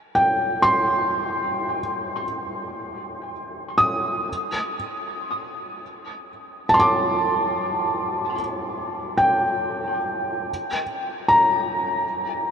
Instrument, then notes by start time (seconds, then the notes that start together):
felt piano
0.15 G5
0.62 C6
3.78 D#6
6.69 A5
6.74 C6
6.79 D6
9.18 G5
11.28 A#5